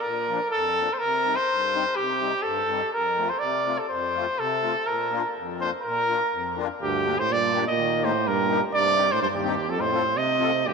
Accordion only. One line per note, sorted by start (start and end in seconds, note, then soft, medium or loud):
0.05 0.40 A#2 medium
0.29 0.39 F3 soft
0.29 0.39 A#3 medium
0.29 0.39 D4 medium
0.53 0.89 F2 medium
0.78 0.88 F3 medium
0.78 0.88 A#3 medium
0.78 0.89 D4 medium
1.02 1.37 C3 medium
1.26 1.36 G3 medium
1.26 1.36 C4 medium
1.26 1.36 D#4 medium
1.50 1.85 G2 medium
1.74 1.84 G3 medium
1.74 1.84 C4 medium
1.74 1.84 D#4 medium
1.98 2.33 C3 medium
2.21 2.32 G3 soft
2.21 2.32 C4 soft
2.21 2.32 D#4 medium
2.45 2.82 G2 medium
2.70 2.80 G3 medium
2.70 2.81 C4 medium
2.70 2.81 D#4 medium
2.94 3.30 F2 soft
3.18 3.29 A3 medium
3.18 3.29 C4 soft
3.18 3.29 F4 medium
3.41 3.78 C3 medium
3.66 3.77 A3 medium
3.66 3.77 C4 medium
3.66 3.78 F4 medium
3.90 4.26 F2 medium
4.14 4.25 A3 soft
4.14 4.25 C4 medium
4.14 4.26 F4 medium
4.39 4.75 C3 medium
4.62 4.73 A3 medium
4.62 4.74 C4 medium
4.62 4.74 F4 medium
4.86 5.23 A#2 soft
5.11 5.22 A#3 medium
5.11 5.22 D4 soft
5.11 5.22 F4 medium
5.36 5.72 F2 medium
5.60 5.70 A#3 medium
5.60 5.71 D4 medium
5.60 5.71 F4 medium
5.85 6.21 A#2 medium
6.09 6.19 A#3 medium
6.09 6.19 D4 soft
6.09 6.19 F4 medium
6.33 6.69 F2 medium
6.57 6.68 A#3 medium
6.57 6.67 D4 medium
6.57 6.68 F4 medium
6.82 7.17 G2 medium
7.06 7.16 A#3 medium
7.06 7.16 D4 medium
7.06 7.16 G4 medium
7.29 7.65 G2 medium
7.53 7.64 A#3 medium
7.53 7.64 D4 medium
7.53 7.64 G4 medium
7.77 8.13 D#3 medium
8.01 8.11 A#3 medium
8.01 8.12 D#4 soft
8.01 8.12 G4 medium
8.25 8.61 A#2 medium
8.49 8.59 A#3 medium
8.49 8.60 D#4 medium
8.49 8.60 G4 medium
8.72 9.08 C3 medium
8.96 9.07 C4 medium
8.96 9.07 D#4 medium
8.96 9.08 G4 medium
9.20 9.56 G2 medium
9.43 9.54 C4 medium
9.43 9.55 D#4 medium
9.43 9.55 G4 medium
9.67 10.04 F2 medium
9.92 10.03 C4 medium
9.92 10.03 F4 medium
9.92 10.03 A4 medium
10.15 10.52 C3 medium
10.39 10.50 C4 medium
10.39 10.51 F4 soft
10.39 10.51 A4 medium
10.63 10.73 G2 medium